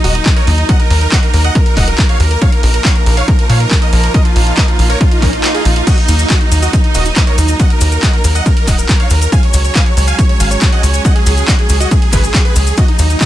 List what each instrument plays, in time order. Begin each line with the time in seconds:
Already playing: string section F#3 A#3 D#4
0.04 analog synth bass D#1, supersaw synth F#4 D#5, open hi-hat
0.15 supersaw synth D#4, closed hi-hat
0.26 supersaw synth D#4, kick, clap, closed hi-hat
0.36 supersaw synth A#4 C#5, closed hi-hat
0.47 analog synth bass D#2, supersaw synth D#4, open hi-hat
0.58 supersaw synth D#4, closed hi-hat
0.69 supersaw synth D#5 F#5, kick, closed hi-hat
0.80 supersaw synth A#4, closed hi-hat
0.90 analog synth bass D#2, supersaw synth A#4, open hi-hat
1.01 supersaw synth A#4, closed hi-hat
1.12 supersaw synth D#5 F#5, kick, clap, closed hi-hat
1.23 supersaw synth A#4, closed hi-hat
1.34 analog synth bass D#2, supersaw synth A#4, open hi-hat
1.44 supersaw synth D#5 F#5, closed hi-hat
1.55 supersaw synth A#4, kick, closed hi-hat
1.66 supersaw synth A#4, closed hi-hat
1.77 analog synth bass D#1, supersaw synth D#5 F#5, kick, clap, open hi-hat
1.88 supersaw synth A#4, closed hi-hat
1.98 supersaw synth A#4, kick, clap, closed hi-hat
2.09 supersaw synth C#5 F5, closed hi-hat
2.20 analog synth bass D#2, supersaw synth A#4, open hi-hat
2.31 supersaw synth A#4, closed hi-hat
2.41 string section F3 D#4, supersaw synth C#5 F5, kick, closed hi-hat
2.52 supersaw synth A#4, closed hi-hat
2.63 analog synth bass A#1, supersaw synth A#4, open hi-hat
2.74 supersaw synth A#4, closed hi-hat
2.85 supersaw synth C#5 F5, kick, clap, closed hi-hat
2.95 supersaw synth A#4, closed hi-hat
3.06 analog synth bass A#1, supersaw synth A#4, open hi-hat
3.17 supersaw synth C#5 F5, closed hi-hat
3.28 supersaw synth A#4, kick, closed hi-hat
3.39 supersaw synth A#4, closed hi-hat
3.49 analog synth bass A#2, supersaw synth C#5 F5, open hi-hat
3.60 supersaw synth A#4, closed hi-hat
3.71 supersaw synth A#4, kick, clap, closed hi-hat
3.82 supersaw synth A#4 D#5, closed hi-hat
3.93 analog synth bass A#1, supersaw synth A#4, open hi-hat
4.03 supersaw synth A#4, closed hi-hat
4.14 supersaw synth A#4 D#5, kick, closed hi-hat
4.25 supersaw synth F4, closed hi-hat
4.36 analog synth bass A#1, supersaw synth F4, open hi-hat
4.47 supersaw synth F4, closed hi-hat
4.57 supersaw synth A#4 D#5, kick, clap, closed hi-hat
4.68 supersaw synth F4, closed hi-hat
4.79 analog synth bass A#1, supersaw synth F4, open hi-hat
4.90 supersaw synth A#4 C#5, closed hi-hat
5.00 supersaw synth F4, kick, closed hi-hat, swell
5.11 supersaw synth F4, closed hi-hat
5.22 analog synth bass A#1, supersaw synth C#4 A#4, kick, clap, open hi-hat
5.33 supersaw synth F4, closed hi-hat
5.44 supersaw synth F4, clap, closed hi-hat
5.54 supersaw synth F4 G#4, closed hi-hat
5.65 analog synth bass A#1, supersaw synth F4, open hi-hat
5.76 supersaw synth F4, closed hi-hat
5.87 string section F#3, supersaw synth F#4 D#5, kick, closed hi-hat, crash, ride, cabasa
5.98 supersaw synth D#4, closed hi-hat
6.08 analog synth bass D#2, supersaw synth D#4, open hi-hat, ride, cabasa
6.19 supersaw synth D#4, closed hi-hat, cabasa
6.30 supersaw synth F#4 D#5, kick, clap, closed hi-hat, ride, cabasa
6.41 supersaw synth D#4, closed hi-hat
6.52 analog synth bass D#2, supersaw synth D#4, open hi-hat, ride, cabasa
6.62 supersaw synth F#4 D#5, closed hi-hat, cabasa
6.73 supersaw synth D#4, kick, closed hi-hat, ride, cabasa
6.84 supersaw synth D#4, closed hi-hat
6.95 analog synth bass D#1, supersaw synth F#4 D#5, open hi-hat, ride, cabasa
7.05 supersaw synth D#4, closed hi-hat, cabasa
7.16 supersaw synth D#4, kick, clap, closed hi-hat, ride, cabasa
7.27 supersaw synth A#4 C#5, closed hi-hat
7.38 analog synth bass D#2, supersaw synth D#4, open hi-hat, ride, cabasa
7.48 supersaw synth D#4, closed hi-hat, cabasa
7.59 supersaw synth D#5 F#5, kick, closed hi-hat, ride, cabasa
7.70 supersaw synth A#4, closed hi-hat
7.81 analog synth bass D#2, supersaw synth A#4, open hi-hat, ride, cabasa
7.92 supersaw synth A#4, closed hi-hat, cabasa
8.03 supersaw synth D#5 F#5, kick, clap, closed hi-hat, ride, cabasa
8.13 supersaw synth A#4, closed hi-hat
8.24 analog synth bass D#2, supersaw synth A#4, open hi-hat, ride, cabasa
8.35 supersaw synth D#5 F#5, closed hi-hat, cabasa
8.46 supersaw synth A#4, kick, closed hi-hat, ride, cabasa
8.57 supersaw synth A#4, closed hi-hat
8.67 analog synth bass D#1, supersaw synth D#5 F#5, kick, clap, open hi-hat, ride, cabasa
8.78 supersaw synth A#4, closed hi-hat, cabasa
8.89 supersaw synth A#4, kick, clap, closed hi-hat, ride, cabasa
9.00 supersaw synth C#5 F5, closed hi-hat
9.10 analog synth bass D#2, supersaw synth A#4, open hi-hat, ride, cabasa
9.21 supersaw synth A#4, closed hi-hat, cabasa
9.32 string section G#3 C#4, supersaw synth F5 G#5, kick, closed hi-hat, ride, cabasa
9.43 supersaw synth C#5, closed hi-hat
9.54 analog synth bass C#2, supersaw synth C#5, open hi-hat, ride, cabasa
9.65 supersaw synth C#5, closed hi-hat, cabasa
9.75 supersaw synth F5 G#5, kick, clap, closed hi-hat, ride, cabasa
9.86 supersaw synth C#5, closed hi-hat
9.97 analog synth bass C#2, supersaw synth C#5, open hi-hat, ride, cabasa
10.07 supersaw synth F5 G#5, closed hi-hat, cabasa
10.18 supersaw synth C#5, kick, closed hi-hat, ride, cabasa
10.29 supersaw synth C#5, closed hi-hat
10.40 analog synth bass G#1, supersaw synth F5 G#5, open hi-hat, ride, cabasa
10.51 supersaw synth C#5, closed hi-hat, cabasa
10.61 supersaw synth C#5, kick, clap, closed hi-hat, ride, cabasa
10.72 supersaw synth D#5 F#5, closed hi-hat
10.83 analog synth bass C#2, supersaw synth C#5, open hi-hat, ride, cabasa
10.94 supersaw synth C#5, closed hi-hat, cabasa
11.05 supersaw synth D#5 F#5, kick, closed hi-hat, ride, cabasa
11.15 supersaw synth G#4, closed hi-hat
11.26 analog synth bass C#2, supersaw synth G#4, open hi-hat, ride, cabasa
11.37 supersaw synth G#4, closed hi-hat, cabasa
11.48 supersaw synth D#5 F#5, kick, clap, closed hi-hat, ride, cabasa
11.59 supersaw synth G#4, closed hi-hat
11.69 analog synth bass C#2, supersaw synth G#4, open hi-hat, ride, cabasa
11.80 supersaw synth F#4 D#5, closed hi-hat, cabasa
11.91 supersaw synth G#4, kick, closed hi-hat, ride, cabasa
12.02 supersaw synth G#4, closed hi-hat
12.13 analog synth bass G#1, supersaw synth G#4 B4, kick, clap, open hi-hat, ride, cabasa
12.23 supersaw synth G#4, closed hi-hat, cabasa
12.34 supersaw synth G#4, kick, clap, closed hi-hat, ride, cabasa
12.45 supersaw synth G#4 B4, closed hi-hat
12.56 analog synth bass C#2, supersaw synth G#4, open hi-hat, ride, cabasa
12.67 supersaw synth G#4, closed hi-hat, cabasa
12.77 string section A#3 D#4, supersaw synth F#4 D#5, kick, closed hi-hat, ride, cabasa
12.88 supersaw synth D#4, closed hi-hat
12.99 analog synth bass D#2, supersaw synth D#4, open hi-hat, ride, cabasa
13.10 supersaw synth D#4, closed hi-hat, cabasa
13.21 supersaw synth F#4 D#5, kick, clap, closed hi-hat, ride, cabasa